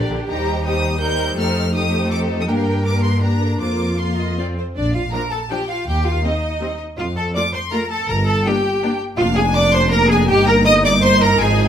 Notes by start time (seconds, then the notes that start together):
Already playing: D4 G4 A#4
0.01 D5
0.10 A#1 D3
0.28 D#2 G3 D#4 G4 C5 A#5
0.64 G3 D#4 G4 C5 D#6
1.00 G3 D#4 G4 A#4 C5 G6
1.37 F2 A3 D#4 G4 A4 C5 F6
1.73 A3 D#4 G4 C5 D#6
2.10 A4 D6
2.40 D#6
2.47 G2 A#3 D4 G4 A#4 G5
2.55 F5
2.62 G5
2.84 A#3 D4 G4 A#4 D6
3.03 C6
3.21 A#3 D4 G4 A#4 A#5
3.41 A4
3.60 F2 A#3 F4 A#4 C5 D6
3.98 A#3 F4 F5 C6
4.20 D#5
4.37 C4 F4 D5
4.58 C5
4.75 A#1 D4 D5
4.94 F4 F5
5.12 F3 D4 A#4 A#5
5.31 A4 A5
5.50 F3 D4 G4 G5
5.69 F4 F5
5.87 D#2 G4 G5
6.06 F4 F5
6.24 G3 C4 D#4 D#5
6.61 G3 C4
6.98 F2 F4 F5
7.16 A4 A5
7.34 A3 F4 D5 D6
7.53 C5 C6
7.71 A3 F4 A#4 A#5
7.90 A4 A5
8.08 G1 A#4 A#5
8.27 A4 A5
8.44 A#3 D4 G4 G5
8.82 A#3 D4
9.17 F1 A#3 D4 F4 F5
9.36 G#4 G#5
9.55 D5 D6
9.73 C5 C6
9.91 A#4 A#5
10.09 G#4 G#5
10.29 G1 D#4 G4 G5
10.47 A#4 A#5
10.65 D#5 D#6
10.84 D5 D6
11.03 C5 C6
11.21 A#4 A#5
11.40 G#1 F3 G#4 G#5